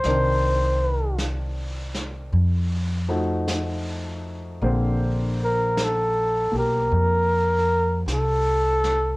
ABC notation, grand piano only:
X:1
M:4/4
L:1/8
Q:"Swing" 1/4=52
K:Bb
V:1 name="Grand piano"
[E,CDB]4 z [F,A,E_G]3 | [D,B,Cc]3 [B,G]4- [B,G] |]